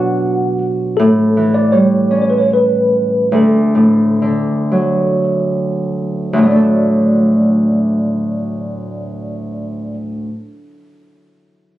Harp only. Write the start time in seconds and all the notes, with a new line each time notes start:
Already playing: B2 F#3 D4 F#4
0.99 A2
1.37 E3
1.73 G3
2.11 C#4
3.32 D2
3.75 A2
4.22 D3
4.72 F#3
6.33 D2
6.38 A2
6.42 F#3
6.46 A3
6.51 D4
6.56 A4